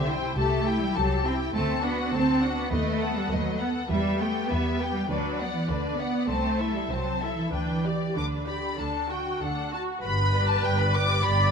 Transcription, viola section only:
0.05 E4
0.36 G4
0.65 E4
0.94 G4
1.24 E4
1.54 C4
1.82 D4
2.11 C4
2.40 D4
2.70 A3
2.99 B3
3.29 A3
3.58 B3
3.89 G3
4.19 B3
4.49 G3
4.79 B3
5.08 D4
5.39 B3
5.69 D4
5.97 B3
6.28 C4
6.59 E4
6.90 C4
7.21 E4
7.52 D4
7.83 G4
8.15 D4
8.46 G4
8.78 D4
9.09 F#4
9.40 D4
9.72 F#4
10.03 B4
11.23 D5

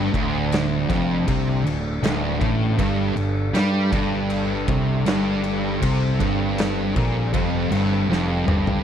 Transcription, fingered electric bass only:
Already playing: G1
0.14 D1
0.90 F1
1.28 C2
1.66 D1
2.03 D1
2.41 A1
2.79 G1
3.16 G1
3.53 G2
3.92 G1
4.68 C2
5.05 G1
5.83 C2
6.20 G1
6.96 A#1
7.35 F1
7.71 G1
8.09 F1
8.48 G1

